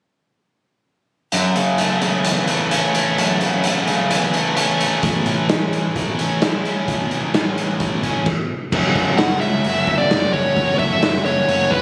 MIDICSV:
0, 0, Header, 1, 5, 480
1, 0, Start_track
1, 0, Tempo, 462606
1, 1364, Time_signature, 4, 2, 24, 8
1, 12263, End_track
2, 0, Start_track
2, 0, Title_t, "Lead electric guitar"
2, 0, Program_c, 0, 29
2, 9520, Note_on_c, 0, 78, 88
2, 9748, Note_off_c, 0, 78, 0
2, 9760, Note_on_c, 0, 76, 85
2, 10321, Note_off_c, 0, 76, 0
2, 10356, Note_on_c, 0, 74, 83
2, 10712, Note_off_c, 0, 74, 0
2, 10717, Note_on_c, 0, 73, 77
2, 11165, Note_off_c, 0, 73, 0
2, 11196, Note_on_c, 0, 76, 86
2, 11674, Note_off_c, 0, 76, 0
2, 11679, Note_on_c, 0, 73, 77
2, 12149, Note_on_c, 0, 71, 71
2, 12171, Note_off_c, 0, 73, 0
2, 12263, Note_off_c, 0, 71, 0
2, 12263, End_track
3, 0, Start_track
3, 0, Title_t, "Distorted electric guitar"
3, 0, Program_c, 1, 30
3, 1385, Note_on_c, 1, 42, 61
3, 1614, Note_on_c, 1, 49, 54
3, 1854, Note_on_c, 1, 57, 53
3, 2080, Note_off_c, 1, 49, 0
3, 2093, Note_on_c, 1, 49, 56
3, 2330, Note_on_c, 1, 52, 58
3, 2569, Note_off_c, 1, 57, 0
3, 2573, Note_on_c, 1, 57, 56
3, 2580, Note_off_c, 1, 42, 0
3, 2811, Note_on_c, 1, 61, 61
3, 3045, Note_off_c, 1, 57, 0
3, 3050, Note_on_c, 1, 57, 55
3, 3294, Note_on_c, 1, 42, 62
3, 3295, Note_off_c, 1, 49, 0
3, 3537, Note_on_c, 1, 49, 55
3, 3777, Note_off_c, 1, 57, 0
3, 3782, Note_on_c, 1, 57, 55
3, 4005, Note_off_c, 1, 49, 0
3, 4018, Note_on_c, 1, 49, 57
3, 4255, Note_off_c, 1, 52, 0
3, 4259, Note_on_c, 1, 52, 58
3, 4491, Note_off_c, 1, 57, 0
3, 4495, Note_on_c, 1, 57, 54
3, 4497, Note_off_c, 1, 42, 0
3, 4727, Note_off_c, 1, 61, 0
3, 4731, Note_on_c, 1, 61, 59
3, 4971, Note_off_c, 1, 57, 0
3, 4975, Note_on_c, 1, 57, 56
3, 5216, Note_on_c, 1, 45, 61
3, 5219, Note_off_c, 1, 49, 0
3, 5462, Note_off_c, 1, 52, 0
3, 5462, Note_on_c, 1, 52, 62
3, 5694, Note_off_c, 1, 57, 0
3, 5699, Note_off_c, 1, 61, 0
3, 5699, Note_on_c, 1, 61, 57
3, 5937, Note_off_c, 1, 52, 0
3, 5941, Note_on_c, 1, 52, 61
3, 6185, Note_on_c, 1, 57, 60
3, 6416, Note_off_c, 1, 61, 0
3, 6419, Note_off_c, 1, 45, 0
3, 6429, Note_on_c, 1, 61, 60
3, 6663, Note_on_c, 1, 64, 66
3, 6894, Note_off_c, 1, 61, 0
3, 6906, Note_on_c, 1, 61, 57
3, 7136, Note_on_c, 1, 45, 64
3, 7140, Note_off_c, 1, 52, 0
3, 7378, Note_on_c, 1, 52, 58
3, 7382, Note_off_c, 1, 57, 0
3, 7604, Note_off_c, 1, 61, 0
3, 7617, Note_on_c, 1, 61, 57
3, 7852, Note_off_c, 1, 52, 0
3, 7860, Note_off_c, 1, 64, 0
3, 7865, Note_on_c, 1, 52, 59
3, 8104, Note_on_c, 1, 57, 61
3, 8327, Note_off_c, 1, 61, 0
3, 8335, Note_off_c, 1, 45, 0
3, 8339, Note_on_c, 1, 61, 53
3, 8578, Note_off_c, 1, 61, 0
3, 8580, Note_off_c, 1, 52, 0
3, 8580, Note_off_c, 1, 57, 0
3, 9050, Note_on_c, 1, 54, 76
3, 9060, Note_on_c, 1, 57, 78
3, 9065, Note_on_c, 1, 61, 85
3, 9079, Note_on_c, 1, 66, 81
3, 9531, Note_off_c, 1, 54, 0
3, 9535, Note_on_c, 1, 54, 58
3, 9542, Note_off_c, 1, 57, 0
3, 9546, Note_on_c, 1, 57, 66
3, 9553, Note_off_c, 1, 61, 0
3, 9557, Note_on_c, 1, 61, 70
3, 9561, Note_off_c, 1, 66, 0
3, 9565, Note_on_c, 1, 66, 69
3, 9772, Note_off_c, 1, 66, 0
3, 9776, Note_on_c, 1, 66, 70
3, 9786, Note_off_c, 1, 61, 0
3, 9790, Note_on_c, 1, 61, 62
3, 9799, Note_off_c, 1, 57, 0
3, 9803, Note_on_c, 1, 57, 51
3, 10003, Note_off_c, 1, 54, 0
3, 10007, Note_on_c, 1, 54, 83
3, 10012, Note_off_c, 1, 57, 0
3, 10016, Note_on_c, 1, 57, 83
3, 10023, Note_off_c, 1, 66, 0
3, 10025, Note_off_c, 1, 61, 0
3, 10029, Note_on_c, 1, 61, 78
3, 10036, Note_on_c, 1, 66, 90
3, 10231, Note_off_c, 1, 66, 0
3, 10244, Note_on_c, 1, 66, 64
3, 10251, Note_off_c, 1, 61, 0
3, 10255, Note_on_c, 1, 61, 56
3, 10264, Note_off_c, 1, 57, 0
3, 10268, Note_on_c, 1, 57, 49
3, 10486, Note_off_c, 1, 54, 0
3, 10701, Note_off_c, 1, 66, 0
3, 10713, Note_on_c, 1, 66, 62
3, 10728, Note_off_c, 1, 61, 0
3, 10732, Note_on_c, 1, 61, 58
3, 10738, Note_off_c, 1, 57, 0
3, 10742, Note_on_c, 1, 57, 48
3, 10948, Note_on_c, 1, 54, 79
3, 10953, Note_off_c, 1, 57, 0
3, 10957, Note_on_c, 1, 57, 84
3, 10964, Note_off_c, 1, 66, 0
3, 10966, Note_off_c, 1, 61, 0
3, 10970, Note_on_c, 1, 61, 82
3, 10976, Note_on_c, 1, 66, 89
3, 11415, Note_off_c, 1, 54, 0
3, 11428, Note_on_c, 1, 54, 68
3, 11433, Note_off_c, 1, 57, 0
3, 11437, Note_on_c, 1, 57, 68
3, 11443, Note_off_c, 1, 66, 0
3, 11444, Note_off_c, 1, 61, 0
3, 11448, Note_on_c, 1, 61, 62
3, 11456, Note_on_c, 1, 66, 70
3, 11661, Note_off_c, 1, 66, 0
3, 11674, Note_on_c, 1, 66, 64
3, 11683, Note_off_c, 1, 61, 0
3, 11687, Note_on_c, 1, 61, 64
3, 11695, Note_off_c, 1, 57, 0
3, 11699, Note_on_c, 1, 57, 57
3, 11896, Note_off_c, 1, 54, 0
3, 11908, Note_on_c, 1, 54, 80
3, 11914, Note_off_c, 1, 57, 0
3, 11919, Note_on_c, 1, 57, 88
3, 11923, Note_off_c, 1, 61, 0
3, 11923, Note_off_c, 1, 66, 0
3, 11927, Note_on_c, 1, 61, 92
3, 11936, Note_on_c, 1, 66, 86
3, 12142, Note_off_c, 1, 66, 0
3, 12155, Note_on_c, 1, 66, 65
3, 12165, Note_off_c, 1, 61, 0
3, 12169, Note_on_c, 1, 61, 55
3, 12180, Note_off_c, 1, 57, 0
3, 12184, Note_on_c, 1, 57, 52
3, 12263, Note_off_c, 1, 54, 0
3, 12263, Note_off_c, 1, 57, 0
3, 12263, Note_off_c, 1, 61, 0
3, 12263, Note_off_c, 1, 66, 0
3, 12263, End_track
4, 0, Start_track
4, 0, Title_t, "Fingered electric bass"
4, 0, Program_c, 2, 33
4, 9052, Note_on_c, 2, 30, 76
4, 9240, Note_off_c, 2, 30, 0
4, 9288, Note_on_c, 2, 30, 72
4, 9477, Note_off_c, 2, 30, 0
4, 9531, Note_on_c, 2, 30, 73
4, 9719, Note_off_c, 2, 30, 0
4, 9772, Note_on_c, 2, 37, 74
4, 9958, Note_off_c, 2, 37, 0
4, 10014, Note_on_c, 2, 30, 81
4, 10200, Note_off_c, 2, 30, 0
4, 10247, Note_on_c, 2, 30, 81
4, 10434, Note_off_c, 2, 30, 0
4, 10499, Note_on_c, 2, 30, 78
4, 10681, Note_off_c, 2, 30, 0
4, 10721, Note_on_c, 2, 30, 78
4, 10910, Note_off_c, 2, 30, 0
4, 10964, Note_on_c, 2, 30, 77
4, 11151, Note_off_c, 2, 30, 0
4, 11202, Note_on_c, 2, 30, 71
4, 11389, Note_off_c, 2, 30, 0
4, 11442, Note_on_c, 2, 30, 75
4, 11628, Note_off_c, 2, 30, 0
4, 11673, Note_on_c, 2, 30, 73
4, 11863, Note_off_c, 2, 30, 0
4, 11916, Note_on_c, 2, 30, 83
4, 12104, Note_off_c, 2, 30, 0
4, 12155, Note_on_c, 2, 30, 78
4, 12263, Note_off_c, 2, 30, 0
4, 12263, End_track
5, 0, Start_track
5, 0, Title_t, "Drums"
5, 1370, Note_on_c, 9, 42, 69
5, 1474, Note_off_c, 9, 42, 0
5, 1614, Note_on_c, 9, 42, 49
5, 1718, Note_off_c, 9, 42, 0
5, 1848, Note_on_c, 9, 42, 67
5, 1951, Note_off_c, 9, 42, 0
5, 2090, Note_on_c, 9, 42, 54
5, 2193, Note_off_c, 9, 42, 0
5, 2329, Note_on_c, 9, 42, 72
5, 2433, Note_off_c, 9, 42, 0
5, 2567, Note_on_c, 9, 42, 53
5, 2671, Note_off_c, 9, 42, 0
5, 2814, Note_on_c, 9, 42, 69
5, 2918, Note_off_c, 9, 42, 0
5, 3056, Note_on_c, 9, 42, 53
5, 3160, Note_off_c, 9, 42, 0
5, 3302, Note_on_c, 9, 42, 65
5, 3405, Note_off_c, 9, 42, 0
5, 3534, Note_on_c, 9, 42, 46
5, 3638, Note_off_c, 9, 42, 0
5, 3773, Note_on_c, 9, 42, 65
5, 3876, Note_off_c, 9, 42, 0
5, 4019, Note_on_c, 9, 42, 48
5, 4123, Note_off_c, 9, 42, 0
5, 4260, Note_on_c, 9, 42, 68
5, 4364, Note_off_c, 9, 42, 0
5, 4498, Note_on_c, 9, 42, 49
5, 4602, Note_off_c, 9, 42, 0
5, 4737, Note_on_c, 9, 42, 69
5, 4841, Note_off_c, 9, 42, 0
5, 4985, Note_on_c, 9, 42, 49
5, 5089, Note_off_c, 9, 42, 0
5, 5217, Note_on_c, 9, 42, 68
5, 5221, Note_on_c, 9, 36, 93
5, 5320, Note_off_c, 9, 42, 0
5, 5324, Note_off_c, 9, 36, 0
5, 5455, Note_on_c, 9, 42, 46
5, 5559, Note_off_c, 9, 42, 0
5, 5699, Note_on_c, 9, 42, 67
5, 5703, Note_on_c, 9, 38, 90
5, 5803, Note_off_c, 9, 42, 0
5, 5807, Note_off_c, 9, 38, 0
5, 5943, Note_on_c, 9, 42, 56
5, 6047, Note_off_c, 9, 42, 0
5, 6181, Note_on_c, 9, 36, 98
5, 6182, Note_on_c, 9, 42, 73
5, 6285, Note_off_c, 9, 36, 0
5, 6286, Note_off_c, 9, 42, 0
5, 6420, Note_on_c, 9, 42, 58
5, 6524, Note_off_c, 9, 42, 0
5, 6658, Note_on_c, 9, 42, 70
5, 6662, Note_on_c, 9, 38, 93
5, 6762, Note_off_c, 9, 42, 0
5, 6766, Note_off_c, 9, 38, 0
5, 6903, Note_on_c, 9, 42, 52
5, 7006, Note_off_c, 9, 42, 0
5, 7139, Note_on_c, 9, 42, 71
5, 7140, Note_on_c, 9, 36, 95
5, 7243, Note_off_c, 9, 36, 0
5, 7243, Note_off_c, 9, 42, 0
5, 7378, Note_on_c, 9, 42, 52
5, 7482, Note_off_c, 9, 42, 0
5, 7617, Note_on_c, 9, 42, 71
5, 7621, Note_on_c, 9, 38, 95
5, 7721, Note_off_c, 9, 42, 0
5, 7725, Note_off_c, 9, 38, 0
5, 7861, Note_on_c, 9, 42, 54
5, 7965, Note_off_c, 9, 42, 0
5, 8092, Note_on_c, 9, 42, 74
5, 8097, Note_on_c, 9, 36, 100
5, 8196, Note_off_c, 9, 42, 0
5, 8201, Note_off_c, 9, 36, 0
5, 8335, Note_on_c, 9, 42, 54
5, 8336, Note_on_c, 9, 36, 69
5, 8439, Note_off_c, 9, 42, 0
5, 8440, Note_off_c, 9, 36, 0
5, 8570, Note_on_c, 9, 49, 72
5, 8574, Note_on_c, 9, 36, 91
5, 8673, Note_off_c, 9, 49, 0
5, 8678, Note_off_c, 9, 36, 0
5, 9051, Note_on_c, 9, 49, 79
5, 9052, Note_on_c, 9, 36, 93
5, 9155, Note_off_c, 9, 49, 0
5, 9156, Note_off_c, 9, 36, 0
5, 9289, Note_on_c, 9, 46, 42
5, 9290, Note_on_c, 9, 36, 67
5, 9393, Note_off_c, 9, 46, 0
5, 9394, Note_off_c, 9, 36, 0
5, 9528, Note_on_c, 9, 46, 62
5, 9532, Note_on_c, 9, 38, 93
5, 9631, Note_off_c, 9, 46, 0
5, 9636, Note_off_c, 9, 38, 0
5, 9768, Note_on_c, 9, 46, 45
5, 9872, Note_off_c, 9, 46, 0
5, 10005, Note_on_c, 9, 46, 64
5, 10109, Note_off_c, 9, 46, 0
5, 10241, Note_on_c, 9, 46, 47
5, 10246, Note_on_c, 9, 36, 76
5, 10345, Note_off_c, 9, 46, 0
5, 10350, Note_off_c, 9, 36, 0
5, 10487, Note_on_c, 9, 46, 63
5, 10492, Note_on_c, 9, 38, 97
5, 10591, Note_off_c, 9, 46, 0
5, 10595, Note_off_c, 9, 38, 0
5, 10725, Note_on_c, 9, 36, 68
5, 10726, Note_on_c, 9, 46, 47
5, 10829, Note_off_c, 9, 36, 0
5, 10829, Note_off_c, 9, 46, 0
5, 10961, Note_on_c, 9, 46, 59
5, 10963, Note_on_c, 9, 36, 97
5, 11065, Note_off_c, 9, 46, 0
5, 11067, Note_off_c, 9, 36, 0
5, 11196, Note_on_c, 9, 46, 44
5, 11201, Note_on_c, 9, 36, 71
5, 11300, Note_off_c, 9, 46, 0
5, 11305, Note_off_c, 9, 36, 0
5, 11438, Note_on_c, 9, 46, 60
5, 11443, Note_on_c, 9, 38, 93
5, 11542, Note_off_c, 9, 46, 0
5, 11546, Note_off_c, 9, 38, 0
5, 11679, Note_on_c, 9, 46, 43
5, 11783, Note_off_c, 9, 46, 0
5, 11916, Note_on_c, 9, 46, 60
5, 12020, Note_off_c, 9, 46, 0
5, 12157, Note_on_c, 9, 36, 75
5, 12160, Note_on_c, 9, 46, 44
5, 12261, Note_off_c, 9, 36, 0
5, 12263, Note_off_c, 9, 46, 0
5, 12263, End_track
0, 0, End_of_file